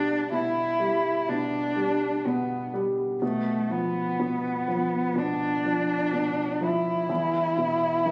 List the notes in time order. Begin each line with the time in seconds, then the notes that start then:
Already playing: B2 G3 D4
0.32 B2 E4
0.80 G3
1.29 B2 D4
1.76 G3
2.25 B2 B3
2.74 G3
3.22 B2 A3
3.70 F3 B3
4.20 B2
4.68 F3
5.16 B2 D4
5.65 F3
6.13 B2
6.61 F3 E4
7.09 E2
7.57 B2
8.06 E3